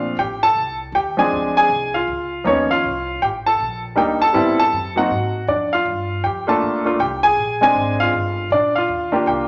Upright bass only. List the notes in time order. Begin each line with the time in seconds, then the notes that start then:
Already playing: A#1
0.17 A1
0.55 C2
0.92 D#2
1.31 D2
1.69 C2
2.07 C#2
2.45 D#2
2.84 C2
3.22 A1
3.60 A#1
3.97 D2
4.35 A2
4.72 F#2
5.10 G#2
5.48 F2
5.85 G2
6.24 F2
6.62 D2
6.99 C2
7.37 A#1
7.75 G#1
8.13 G1
8.50 A#1
8.88 D#2
9.26 C2